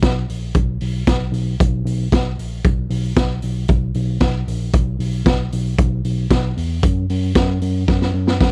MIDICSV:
0, 0, Header, 1, 3, 480
1, 0, Start_track
1, 0, Tempo, 523560
1, 508, Time_signature, 4, 2, 24, 8
1, 7810, End_track
2, 0, Start_track
2, 0, Title_t, "Tine electric piano"
2, 0, Program_c, 0, 4
2, 22, Note_on_c, 0, 35, 95
2, 221, Note_off_c, 0, 35, 0
2, 264, Note_on_c, 0, 34, 86
2, 462, Note_off_c, 0, 34, 0
2, 502, Note_on_c, 0, 35, 98
2, 702, Note_off_c, 0, 35, 0
2, 738, Note_on_c, 0, 35, 90
2, 939, Note_off_c, 0, 35, 0
2, 986, Note_on_c, 0, 35, 88
2, 1184, Note_off_c, 0, 35, 0
2, 1205, Note_on_c, 0, 35, 93
2, 1411, Note_off_c, 0, 35, 0
2, 1468, Note_on_c, 0, 35, 99
2, 1665, Note_off_c, 0, 35, 0
2, 1691, Note_on_c, 0, 35, 96
2, 1895, Note_off_c, 0, 35, 0
2, 1948, Note_on_c, 0, 35, 89
2, 2144, Note_off_c, 0, 35, 0
2, 2181, Note_on_c, 0, 34, 87
2, 2380, Note_off_c, 0, 34, 0
2, 2424, Note_on_c, 0, 35, 98
2, 2623, Note_off_c, 0, 35, 0
2, 2658, Note_on_c, 0, 35, 95
2, 2859, Note_off_c, 0, 35, 0
2, 2899, Note_on_c, 0, 35, 87
2, 3100, Note_off_c, 0, 35, 0
2, 3144, Note_on_c, 0, 35, 86
2, 3342, Note_off_c, 0, 35, 0
2, 3383, Note_on_c, 0, 35, 91
2, 3582, Note_off_c, 0, 35, 0
2, 3620, Note_on_c, 0, 35, 98
2, 3820, Note_off_c, 0, 35, 0
2, 3860, Note_on_c, 0, 35, 92
2, 4060, Note_off_c, 0, 35, 0
2, 4102, Note_on_c, 0, 34, 97
2, 4301, Note_off_c, 0, 34, 0
2, 4339, Note_on_c, 0, 35, 106
2, 4539, Note_off_c, 0, 35, 0
2, 4577, Note_on_c, 0, 35, 90
2, 4778, Note_off_c, 0, 35, 0
2, 4818, Note_on_c, 0, 35, 91
2, 5019, Note_off_c, 0, 35, 0
2, 5059, Note_on_c, 0, 35, 90
2, 5260, Note_off_c, 0, 35, 0
2, 5304, Note_on_c, 0, 35, 99
2, 5502, Note_off_c, 0, 35, 0
2, 5538, Note_on_c, 0, 35, 91
2, 5739, Note_off_c, 0, 35, 0
2, 5781, Note_on_c, 0, 35, 99
2, 5981, Note_off_c, 0, 35, 0
2, 6021, Note_on_c, 0, 40, 98
2, 6220, Note_off_c, 0, 40, 0
2, 6259, Note_on_c, 0, 42, 105
2, 6459, Note_off_c, 0, 42, 0
2, 6503, Note_on_c, 0, 42, 102
2, 6701, Note_off_c, 0, 42, 0
2, 6743, Note_on_c, 0, 42, 107
2, 6941, Note_off_c, 0, 42, 0
2, 6978, Note_on_c, 0, 42, 97
2, 7178, Note_off_c, 0, 42, 0
2, 7225, Note_on_c, 0, 42, 101
2, 7422, Note_off_c, 0, 42, 0
2, 7456, Note_on_c, 0, 42, 97
2, 7657, Note_off_c, 0, 42, 0
2, 7705, Note_on_c, 0, 42, 105
2, 7810, Note_off_c, 0, 42, 0
2, 7810, End_track
3, 0, Start_track
3, 0, Title_t, "Drums"
3, 22, Note_on_c, 9, 42, 76
3, 23, Note_on_c, 9, 36, 105
3, 26, Note_on_c, 9, 38, 101
3, 113, Note_off_c, 9, 42, 0
3, 115, Note_off_c, 9, 36, 0
3, 118, Note_off_c, 9, 38, 0
3, 270, Note_on_c, 9, 46, 63
3, 362, Note_off_c, 9, 46, 0
3, 499, Note_on_c, 9, 42, 76
3, 503, Note_on_c, 9, 36, 112
3, 591, Note_off_c, 9, 42, 0
3, 595, Note_off_c, 9, 36, 0
3, 739, Note_on_c, 9, 46, 75
3, 831, Note_off_c, 9, 46, 0
3, 980, Note_on_c, 9, 42, 61
3, 983, Note_on_c, 9, 36, 98
3, 985, Note_on_c, 9, 38, 114
3, 1072, Note_off_c, 9, 42, 0
3, 1075, Note_off_c, 9, 36, 0
3, 1077, Note_off_c, 9, 38, 0
3, 1224, Note_on_c, 9, 46, 64
3, 1315, Note_off_c, 9, 46, 0
3, 1469, Note_on_c, 9, 36, 117
3, 1471, Note_on_c, 9, 42, 64
3, 1561, Note_off_c, 9, 36, 0
3, 1563, Note_off_c, 9, 42, 0
3, 1710, Note_on_c, 9, 46, 61
3, 1802, Note_off_c, 9, 46, 0
3, 1947, Note_on_c, 9, 36, 110
3, 1949, Note_on_c, 9, 42, 75
3, 1954, Note_on_c, 9, 38, 106
3, 2039, Note_off_c, 9, 36, 0
3, 2041, Note_off_c, 9, 42, 0
3, 2046, Note_off_c, 9, 38, 0
3, 2192, Note_on_c, 9, 46, 67
3, 2283, Note_off_c, 9, 46, 0
3, 2425, Note_on_c, 9, 42, 74
3, 2426, Note_on_c, 9, 36, 110
3, 2517, Note_off_c, 9, 42, 0
3, 2518, Note_off_c, 9, 36, 0
3, 2661, Note_on_c, 9, 46, 72
3, 2753, Note_off_c, 9, 46, 0
3, 2899, Note_on_c, 9, 42, 61
3, 2903, Note_on_c, 9, 36, 101
3, 2904, Note_on_c, 9, 38, 103
3, 2991, Note_off_c, 9, 42, 0
3, 2994, Note_off_c, 9, 36, 0
3, 2996, Note_off_c, 9, 38, 0
3, 3136, Note_on_c, 9, 46, 66
3, 3227, Note_off_c, 9, 46, 0
3, 3374, Note_on_c, 9, 42, 65
3, 3383, Note_on_c, 9, 36, 111
3, 3466, Note_off_c, 9, 42, 0
3, 3475, Note_off_c, 9, 36, 0
3, 3615, Note_on_c, 9, 46, 55
3, 3707, Note_off_c, 9, 46, 0
3, 3853, Note_on_c, 9, 42, 76
3, 3858, Note_on_c, 9, 38, 104
3, 3860, Note_on_c, 9, 36, 107
3, 3944, Note_off_c, 9, 42, 0
3, 3949, Note_off_c, 9, 38, 0
3, 3952, Note_off_c, 9, 36, 0
3, 4106, Note_on_c, 9, 46, 66
3, 4197, Note_off_c, 9, 46, 0
3, 4339, Note_on_c, 9, 42, 75
3, 4343, Note_on_c, 9, 36, 113
3, 4430, Note_off_c, 9, 42, 0
3, 4434, Note_off_c, 9, 36, 0
3, 4584, Note_on_c, 9, 46, 76
3, 4676, Note_off_c, 9, 46, 0
3, 4821, Note_on_c, 9, 42, 57
3, 4822, Note_on_c, 9, 36, 106
3, 4826, Note_on_c, 9, 38, 110
3, 4912, Note_off_c, 9, 42, 0
3, 4913, Note_off_c, 9, 36, 0
3, 4918, Note_off_c, 9, 38, 0
3, 5064, Note_on_c, 9, 46, 64
3, 5155, Note_off_c, 9, 46, 0
3, 5301, Note_on_c, 9, 42, 68
3, 5304, Note_on_c, 9, 36, 112
3, 5393, Note_off_c, 9, 42, 0
3, 5395, Note_off_c, 9, 36, 0
3, 5542, Note_on_c, 9, 46, 60
3, 5634, Note_off_c, 9, 46, 0
3, 5780, Note_on_c, 9, 42, 77
3, 5781, Note_on_c, 9, 36, 102
3, 5784, Note_on_c, 9, 38, 117
3, 5871, Note_off_c, 9, 42, 0
3, 5873, Note_off_c, 9, 36, 0
3, 5876, Note_off_c, 9, 38, 0
3, 6028, Note_on_c, 9, 46, 70
3, 6119, Note_off_c, 9, 46, 0
3, 6263, Note_on_c, 9, 36, 117
3, 6265, Note_on_c, 9, 42, 74
3, 6355, Note_off_c, 9, 36, 0
3, 6357, Note_off_c, 9, 42, 0
3, 6505, Note_on_c, 9, 46, 78
3, 6596, Note_off_c, 9, 46, 0
3, 6739, Note_on_c, 9, 42, 63
3, 6742, Note_on_c, 9, 36, 106
3, 6745, Note_on_c, 9, 38, 108
3, 6831, Note_off_c, 9, 42, 0
3, 6834, Note_off_c, 9, 36, 0
3, 6836, Note_off_c, 9, 38, 0
3, 6981, Note_on_c, 9, 46, 66
3, 7073, Note_off_c, 9, 46, 0
3, 7225, Note_on_c, 9, 38, 57
3, 7226, Note_on_c, 9, 36, 113
3, 7317, Note_off_c, 9, 38, 0
3, 7318, Note_off_c, 9, 36, 0
3, 7349, Note_on_c, 9, 38, 55
3, 7441, Note_off_c, 9, 38, 0
3, 7585, Note_on_c, 9, 38, 70
3, 7676, Note_off_c, 9, 38, 0
3, 7706, Note_on_c, 9, 36, 107
3, 7706, Note_on_c, 9, 38, 87
3, 7797, Note_off_c, 9, 38, 0
3, 7798, Note_off_c, 9, 36, 0
3, 7810, End_track
0, 0, End_of_file